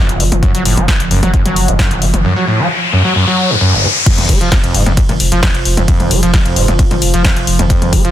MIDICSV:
0, 0, Header, 1, 6, 480
1, 0, Start_track
1, 0, Tempo, 454545
1, 451, Time_signature, 4, 2, 24, 8
1, 8566, End_track
2, 0, Start_track
2, 0, Title_t, "Synth drone"
2, 0, Program_c, 0, 95
2, 0, Note_on_c, 0, 53, 76
2, 2372, Note_off_c, 0, 53, 0
2, 4291, Note_on_c, 0, 53, 74
2, 8566, Note_off_c, 0, 53, 0
2, 8566, End_track
3, 0, Start_track
3, 0, Title_t, "Acid bass"
3, 0, Program_c, 1, 38
3, 0, Note_on_c, 1, 42, 106
3, 97, Note_on_c, 1, 30, 76
3, 113, Note_off_c, 1, 42, 0
3, 211, Note_on_c, 1, 54, 76
3, 227, Note_off_c, 1, 30, 0
3, 253, Note_off_c, 1, 54, 0
3, 451, Note_on_c, 1, 42, 101
3, 555, Note_off_c, 1, 42, 0
3, 576, Note_on_c, 1, 54, 75
3, 671, Note_off_c, 1, 54, 0
3, 690, Note_on_c, 1, 45, 78
3, 816, Note_on_c, 1, 54, 100
3, 831, Note_off_c, 1, 45, 0
3, 911, Note_off_c, 1, 54, 0
3, 1171, Note_on_c, 1, 42, 108
3, 1275, Note_off_c, 1, 42, 0
3, 1297, Note_on_c, 1, 54, 79
3, 1391, Note_off_c, 1, 54, 0
3, 1411, Note_on_c, 1, 42, 82
3, 1515, Note_off_c, 1, 42, 0
3, 1537, Note_on_c, 1, 54, 78
3, 1777, Note_on_c, 1, 42, 74
3, 1792, Note_off_c, 1, 54, 0
3, 1840, Note_off_c, 1, 42, 0
3, 1890, Note_on_c, 1, 42, 105
3, 2016, Note_on_c, 1, 30, 74
3, 2032, Note_off_c, 1, 42, 0
3, 2130, Note_on_c, 1, 54, 77
3, 2146, Note_off_c, 1, 30, 0
3, 2172, Note_off_c, 1, 54, 0
3, 2370, Note_on_c, 1, 42, 102
3, 2475, Note_off_c, 1, 42, 0
3, 2496, Note_on_c, 1, 54, 78
3, 2591, Note_off_c, 1, 54, 0
3, 2610, Note_on_c, 1, 45, 73
3, 2736, Note_on_c, 1, 54, 102
3, 2752, Note_off_c, 1, 45, 0
3, 2831, Note_off_c, 1, 54, 0
3, 3090, Note_on_c, 1, 42, 105
3, 3195, Note_off_c, 1, 42, 0
3, 3216, Note_on_c, 1, 54, 79
3, 3311, Note_off_c, 1, 54, 0
3, 3330, Note_on_c, 1, 42, 81
3, 3435, Note_off_c, 1, 42, 0
3, 3456, Note_on_c, 1, 54, 75
3, 3696, Note_on_c, 1, 42, 75
3, 3712, Note_off_c, 1, 54, 0
3, 3760, Note_off_c, 1, 42, 0
3, 3811, Note_on_c, 1, 42, 103
3, 3937, Note_on_c, 1, 30, 76
3, 3952, Note_off_c, 1, 42, 0
3, 4050, Note_on_c, 1, 54, 76
3, 4066, Note_off_c, 1, 30, 0
3, 4092, Note_off_c, 1, 54, 0
3, 4290, Note_on_c, 1, 41, 105
3, 4531, Note_on_c, 1, 56, 75
3, 4547, Note_off_c, 1, 41, 0
3, 4635, Note_off_c, 1, 56, 0
3, 4656, Note_on_c, 1, 53, 97
3, 4751, Note_off_c, 1, 53, 0
3, 4771, Note_on_c, 1, 41, 86
3, 4840, Note_off_c, 1, 41, 0
3, 4897, Note_on_c, 1, 41, 76
3, 5011, Note_on_c, 1, 44, 81
3, 5026, Note_off_c, 1, 41, 0
3, 5115, Note_off_c, 1, 44, 0
3, 5136, Note_on_c, 1, 41, 81
3, 5200, Note_off_c, 1, 41, 0
3, 5251, Note_on_c, 1, 41, 103
3, 5293, Note_off_c, 1, 41, 0
3, 5376, Note_on_c, 1, 46, 105
3, 5415, Note_off_c, 1, 46, 0
3, 5616, Note_on_c, 1, 53, 99
3, 5711, Note_off_c, 1, 53, 0
3, 5731, Note_on_c, 1, 41, 87
3, 5800, Note_off_c, 1, 41, 0
3, 6096, Note_on_c, 1, 41, 80
3, 6160, Note_off_c, 1, 41, 0
3, 6211, Note_on_c, 1, 41, 101
3, 6451, Note_on_c, 1, 56, 77
3, 6466, Note_off_c, 1, 41, 0
3, 6555, Note_off_c, 1, 56, 0
3, 6577, Note_on_c, 1, 53, 105
3, 6671, Note_off_c, 1, 53, 0
3, 6690, Note_on_c, 1, 41, 88
3, 6760, Note_off_c, 1, 41, 0
3, 6816, Note_on_c, 1, 41, 78
3, 6931, Note_on_c, 1, 44, 82
3, 6947, Note_off_c, 1, 41, 0
3, 7035, Note_off_c, 1, 44, 0
3, 7057, Note_on_c, 1, 41, 77
3, 7120, Note_off_c, 1, 41, 0
3, 7171, Note_on_c, 1, 41, 98
3, 7213, Note_off_c, 1, 41, 0
3, 7297, Note_on_c, 1, 46, 108
3, 7335, Note_off_c, 1, 46, 0
3, 7537, Note_on_c, 1, 53, 105
3, 7631, Note_off_c, 1, 53, 0
3, 7651, Note_on_c, 1, 41, 85
3, 7721, Note_off_c, 1, 41, 0
3, 8017, Note_on_c, 1, 41, 82
3, 8080, Note_off_c, 1, 41, 0
3, 8131, Note_on_c, 1, 41, 104
3, 8372, Note_on_c, 1, 56, 75
3, 8387, Note_off_c, 1, 41, 0
3, 8475, Note_off_c, 1, 56, 0
3, 8497, Note_on_c, 1, 53, 98
3, 8566, Note_off_c, 1, 53, 0
3, 8566, End_track
4, 0, Start_track
4, 0, Title_t, "Sub bass"
4, 0, Program_c, 2, 38
4, 97, Note_on_c, 2, 30, 74
4, 205, Note_off_c, 2, 30, 0
4, 211, Note_on_c, 2, 30, 98
4, 330, Note_off_c, 2, 30, 0
4, 337, Note_on_c, 2, 30, 76
4, 449, Note_off_c, 2, 30, 0
4, 577, Note_on_c, 2, 30, 76
4, 685, Note_off_c, 2, 30, 0
4, 691, Note_on_c, 2, 30, 102
4, 811, Note_off_c, 2, 30, 0
4, 817, Note_on_c, 2, 30, 85
4, 929, Note_off_c, 2, 30, 0
4, 1057, Note_on_c, 2, 30, 79
4, 1165, Note_off_c, 2, 30, 0
4, 1171, Note_on_c, 2, 30, 104
4, 1291, Note_off_c, 2, 30, 0
4, 1297, Note_on_c, 2, 30, 85
4, 1409, Note_off_c, 2, 30, 0
4, 1537, Note_on_c, 2, 30, 83
4, 1645, Note_off_c, 2, 30, 0
4, 1651, Note_on_c, 2, 30, 104
4, 1771, Note_off_c, 2, 30, 0
4, 1777, Note_on_c, 2, 30, 82
4, 1889, Note_off_c, 2, 30, 0
4, 2017, Note_on_c, 2, 30, 73
4, 2125, Note_off_c, 2, 30, 0
4, 2132, Note_on_c, 2, 30, 98
4, 2251, Note_off_c, 2, 30, 0
4, 2258, Note_on_c, 2, 30, 81
4, 2369, Note_off_c, 2, 30, 0
4, 4417, Note_on_c, 2, 29, 78
4, 4525, Note_off_c, 2, 29, 0
4, 4531, Note_on_c, 2, 29, 100
4, 4651, Note_off_c, 2, 29, 0
4, 4657, Note_on_c, 2, 29, 86
4, 4769, Note_off_c, 2, 29, 0
4, 4897, Note_on_c, 2, 29, 76
4, 5005, Note_off_c, 2, 29, 0
4, 5011, Note_on_c, 2, 29, 104
4, 5130, Note_off_c, 2, 29, 0
4, 5137, Note_on_c, 2, 29, 84
4, 5249, Note_off_c, 2, 29, 0
4, 5377, Note_on_c, 2, 29, 81
4, 5485, Note_off_c, 2, 29, 0
4, 5491, Note_on_c, 2, 29, 103
4, 5611, Note_off_c, 2, 29, 0
4, 5617, Note_on_c, 2, 29, 79
4, 5729, Note_off_c, 2, 29, 0
4, 5857, Note_on_c, 2, 29, 77
4, 5965, Note_off_c, 2, 29, 0
4, 5971, Note_on_c, 2, 29, 101
4, 6091, Note_off_c, 2, 29, 0
4, 6097, Note_on_c, 2, 29, 78
4, 6209, Note_off_c, 2, 29, 0
4, 6337, Note_on_c, 2, 29, 77
4, 6445, Note_off_c, 2, 29, 0
4, 6451, Note_on_c, 2, 29, 100
4, 6571, Note_off_c, 2, 29, 0
4, 6577, Note_on_c, 2, 29, 83
4, 6689, Note_off_c, 2, 29, 0
4, 6817, Note_on_c, 2, 29, 80
4, 6925, Note_off_c, 2, 29, 0
4, 6932, Note_on_c, 2, 29, 105
4, 7051, Note_off_c, 2, 29, 0
4, 7057, Note_on_c, 2, 29, 85
4, 7169, Note_off_c, 2, 29, 0
4, 7297, Note_on_c, 2, 29, 77
4, 7405, Note_off_c, 2, 29, 0
4, 7412, Note_on_c, 2, 29, 103
4, 7531, Note_off_c, 2, 29, 0
4, 7538, Note_on_c, 2, 29, 82
4, 7649, Note_off_c, 2, 29, 0
4, 7777, Note_on_c, 2, 29, 74
4, 7885, Note_off_c, 2, 29, 0
4, 7891, Note_on_c, 2, 29, 100
4, 8011, Note_off_c, 2, 29, 0
4, 8017, Note_on_c, 2, 29, 80
4, 8129, Note_off_c, 2, 29, 0
4, 8258, Note_on_c, 2, 29, 79
4, 8365, Note_off_c, 2, 29, 0
4, 8371, Note_on_c, 2, 29, 102
4, 8491, Note_off_c, 2, 29, 0
4, 8498, Note_on_c, 2, 29, 82
4, 8566, Note_off_c, 2, 29, 0
4, 8566, End_track
5, 0, Start_track
5, 0, Title_t, "Riser"
5, 0, Program_c, 3, 103
5, 451, Note_on_c, 3, 60, 72
5, 4291, Note_off_c, 3, 60, 0
5, 8566, End_track
6, 0, Start_track
6, 0, Title_t, "Drums"
6, 97, Note_on_c, 9, 42, 61
6, 203, Note_off_c, 9, 42, 0
6, 211, Note_on_c, 9, 46, 88
6, 317, Note_off_c, 9, 46, 0
6, 338, Note_on_c, 9, 42, 63
6, 338, Note_on_c, 9, 47, 93
6, 443, Note_off_c, 9, 42, 0
6, 443, Note_off_c, 9, 47, 0
6, 451, Note_on_c, 9, 36, 108
6, 451, Note_on_c, 9, 42, 62
6, 556, Note_off_c, 9, 36, 0
6, 557, Note_off_c, 9, 42, 0
6, 577, Note_on_c, 9, 42, 66
6, 683, Note_off_c, 9, 42, 0
6, 691, Note_on_c, 9, 46, 105
6, 797, Note_off_c, 9, 46, 0
6, 818, Note_on_c, 9, 42, 68
6, 818, Note_on_c, 9, 47, 85
6, 923, Note_off_c, 9, 42, 0
6, 923, Note_off_c, 9, 47, 0
6, 931, Note_on_c, 9, 36, 111
6, 931, Note_on_c, 9, 38, 125
6, 931, Note_on_c, 9, 42, 68
6, 1036, Note_off_c, 9, 36, 0
6, 1037, Note_off_c, 9, 38, 0
6, 1037, Note_off_c, 9, 42, 0
6, 1057, Note_on_c, 9, 42, 66
6, 1163, Note_off_c, 9, 42, 0
6, 1172, Note_on_c, 9, 46, 90
6, 1277, Note_off_c, 9, 46, 0
6, 1297, Note_on_c, 9, 42, 65
6, 1297, Note_on_c, 9, 47, 92
6, 1403, Note_off_c, 9, 42, 0
6, 1403, Note_off_c, 9, 47, 0
6, 1411, Note_on_c, 9, 36, 112
6, 1411, Note_on_c, 9, 42, 66
6, 1516, Note_off_c, 9, 36, 0
6, 1517, Note_off_c, 9, 42, 0
6, 1537, Note_on_c, 9, 42, 69
6, 1537, Note_on_c, 9, 47, 84
6, 1643, Note_off_c, 9, 42, 0
6, 1643, Note_off_c, 9, 47, 0
6, 1651, Note_on_c, 9, 46, 106
6, 1757, Note_off_c, 9, 46, 0
6, 1777, Note_on_c, 9, 42, 63
6, 1883, Note_off_c, 9, 42, 0
6, 1891, Note_on_c, 9, 36, 115
6, 1891, Note_on_c, 9, 38, 118
6, 1891, Note_on_c, 9, 42, 66
6, 1997, Note_off_c, 9, 36, 0
6, 1997, Note_off_c, 9, 38, 0
6, 1997, Note_off_c, 9, 42, 0
6, 2017, Note_on_c, 9, 42, 62
6, 2123, Note_off_c, 9, 42, 0
6, 2131, Note_on_c, 9, 46, 88
6, 2237, Note_off_c, 9, 46, 0
6, 2257, Note_on_c, 9, 42, 66
6, 2257, Note_on_c, 9, 47, 91
6, 2363, Note_off_c, 9, 42, 0
6, 2363, Note_off_c, 9, 47, 0
6, 4291, Note_on_c, 9, 36, 116
6, 4291, Note_on_c, 9, 42, 80
6, 4291, Note_on_c, 9, 49, 101
6, 4291, Note_on_c, 9, 51, 66
6, 4397, Note_off_c, 9, 36, 0
6, 4397, Note_off_c, 9, 42, 0
6, 4397, Note_off_c, 9, 49, 0
6, 4397, Note_off_c, 9, 51, 0
6, 4417, Note_on_c, 9, 42, 55
6, 4417, Note_on_c, 9, 47, 82
6, 4523, Note_off_c, 9, 42, 0
6, 4523, Note_off_c, 9, 47, 0
6, 4531, Note_on_c, 9, 36, 63
6, 4531, Note_on_c, 9, 46, 109
6, 4637, Note_off_c, 9, 36, 0
6, 4637, Note_off_c, 9, 46, 0
6, 4657, Note_on_c, 9, 42, 56
6, 4763, Note_off_c, 9, 42, 0
6, 4771, Note_on_c, 9, 36, 121
6, 4771, Note_on_c, 9, 38, 125
6, 4771, Note_on_c, 9, 42, 83
6, 4771, Note_on_c, 9, 51, 65
6, 4877, Note_off_c, 9, 36, 0
6, 4877, Note_off_c, 9, 38, 0
6, 4877, Note_off_c, 9, 42, 0
6, 4877, Note_off_c, 9, 51, 0
6, 4897, Note_on_c, 9, 42, 55
6, 5003, Note_off_c, 9, 42, 0
6, 5011, Note_on_c, 9, 46, 95
6, 5116, Note_off_c, 9, 46, 0
6, 5137, Note_on_c, 9, 42, 53
6, 5137, Note_on_c, 9, 47, 89
6, 5242, Note_off_c, 9, 42, 0
6, 5242, Note_off_c, 9, 47, 0
6, 5251, Note_on_c, 9, 36, 122
6, 5251, Note_on_c, 9, 42, 83
6, 5251, Note_on_c, 9, 51, 70
6, 5356, Note_off_c, 9, 42, 0
6, 5356, Note_off_c, 9, 51, 0
6, 5357, Note_off_c, 9, 36, 0
6, 5377, Note_on_c, 9, 42, 57
6, 5377, Note_on_c, 9, 47, 82
6, 5483, Note_off_c, 9, 42, 0
6, 5483, Note_off_c, 9, 47, 0
6, 5491, Note_on_c, 9, 46, 108
6, 5597, Note_off_c, 9, 46, 0
6, 5617, Note_on_c, 9, 42, 56
6, 5723, Note_off_c, 9, 42, 0
6, 5731, Note_on_c, 9, 36, 120
6, 5731, Note_on_c, 9, 38, 126
6, 5731, Note_on_c, 9, 42, 87
6, 5731, Note_on_c, 9, 51, 70
6, 5837, Note_off_c, 9, 36, 0
6, 5837, Note_off_c, 9, 38, 0
6, 5837, Note_off_c, 9, 42, 0
6, 5837, Note_off_c, 9, 51, 0
6, 5857, Note_on_c, 9, 42, 54
6, 5962, Note_off_c, 9, 42, 0
6, 5971, Note_on_c, 9, 46, 94
6, 6077, Note_off_c, 9, 46, 0
6, 6097, Note_on_c, 9, 42, 68
6, 6097, Note_on_c, 9, 47, 88
6, 6203, Note_off_c, 9, 42, 0
6, 6203, Note_off_c, 9, 47, 0
6, 6211, Note_on_c, 9, 36, 117
6, 6211, Note_on_c, 9, 42, 81
6, 6211, Note_on_c, 9, 51, 65
6, 6317, Note_off_c, 9, 36, 0
6, 6317, Note_off_c, 9, 42, 0
6, 6317, Note_off_c, 9, 51, 0
6, 6337, Note_on_c, 9, 42, 53
6, 6337, Note_on_c, 9, 47, 80
6, 6443, Note_off_c, 9, 42, 0
6, 6443, Note_off_c, 9, 47, 0
6, 6451, Note_on_c, 9, 46, 112
6, 6557, Note_off_c, 9, 46, 0
6, 6577, Note_on_c, 9, 42, 54
6, 6683, Note_off_c, 9, 42, 0
6, 6691, Note_on_c, 9, 36, 127
6, 6691, Note_on_c, 9, 38, 117
6, 6691, Note_on_c, 9, 42, 85
6, 6691, Note_on_c, 9, 51, 64
6, 6797, Note_off_c, 9, 36, 0
6, 6797, Note_off_c, 9, 38, 0
6, 6797, Note_off_c, 9, 42, 0
6, 6797, Note_off_c, 9, 51, 0
6, 6817, Note_on_c, 9, 42, 56
6, 6923, Note_off_c, 9, 42, 0
6, 6932, Note_on_c, 9, 46, 102
6, 7037, Note_off_c, 9, 46, 0
6, 7057, Note_on_c, 9, 42, 55
6, 7057, Note_on_c, 9, 47, 88
6, 7163, Note_off_c, 9, 42, 0
6, 7163, Note_off_c, 9, 47, 0
6, 7171, Note_on_c, 9, 36, 127
6, 7172, Note_on_c, 9, 42, 87
6, 7172, Note_on_c, 9, 51, 69
6, 7277, Note_off_c, 9, 36, 0
6, 7277, Note_off_c, 9, 42, 0
6, 7277, Note_off_c, 9, 51, 0
6, 7297, Note_on_c, 9, 42, 58
6, 7297, Note_on_c, 9, 47, 85
6, 7403, Note_off_c, 9, 42, 0
6, 7403, Note_off_c, 9, 47, 0
6, 7412, Note_on_c, 9, 46, 109
6, 7517, Note_off_c, 9, 46, 0
6, 7538, Note_on_c, 9, 42, 55
6, 7643, Note_off_c, 9, 42, 0
6, 7651, Note_on_c, 9, 36, 120
6, 7652, Note_on_c, 9, 38, 127
6, 7652, Note_on_c, 9, 42, 87
6, 7652, Note_on_c, 9, 51, 68
6, 7757, Note_off_c, 9, 36, 0
6, 7757, Note_off_c, 9, 38, 0
6, 7757, Note_off_c, 9, 42, 0
6, 7757, Note_off_c, 9, 51, 0
6, 7778, Note_on_c, 9, 42, 55
6, 7883, Note_off_c, 9, 42, 0
6, 7892, Note_on_c, 9, 46, 97
6, 7997, Note_off_c, 9, 46, 0
6, 8018, Note_on_c, 9, 42, 66
6, 8018, Note_on_c, 9, 47, 92
6, 8123, Note_off_c, 9, 42, 0
6, 8123, Note_off_c, 9, 47, 0
6, 8131, Note_on_c, 9, 36, 116
6, 8132, Note_on_c, 9, 42, 78
6, 8132, Note_on_c, 9, 51, 60
6, 8237, Note_off_c, 9, 36, 0
6, 8237, Note_off_c, 9, 42, 0
6, 8237, Note_off_c, 9, 51, 0
6, 8258, Note_on_c, 9, 42, 54
6, 8258, Note_on_c, 9, 47, 84
6, 8363, Note_off_c, 9, 42, 0
6, 8363, Note_off_c, 9, 47, 0
6, 8371, Note_on_c, 9, 36, 66
6, 8372, Note_on_c, 9, 46, 114
6, 8477, Note_off_c, 9, 36, 0
6, 8477, Note_off_c, 9, 46, 0
6, 8498, Note_on_c, 9, 42, 55
6, 8566, Note_off_c, 9, 42, 0
6, 8566, End_track
0, 0, End_of_file